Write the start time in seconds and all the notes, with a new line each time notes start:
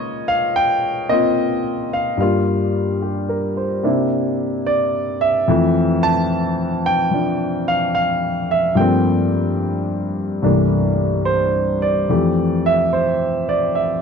Already playing: C#3 G#3 A#3 F4 C#5 D#5
0.28 F5
0.56 G5
1.09 A#3 C4 F4 D#5
1.93 F5
2.17 G2 G3 A#3 F5
2.22 F4
3.02 G4
3.29 A#4
3.57 C5
3.83 C3 A#3 D4 E4
4.66 D5
5.21 E5
5.48 F2 E3 F3 A3
6.03 A5
6.86 G5
7.11 F3 D4
7.68 F5
7.95 F5
8.51 E5
8.75 G2 F3 A3 G5
8.79 A#3 C4
10.42 C2 G2 E3 A3 A#3 D4
11.25 C5
11.82 D5
12.09 F2 E3 A3 G4
12.66 E5
12.93 C5
13.49 D5
13.75 E5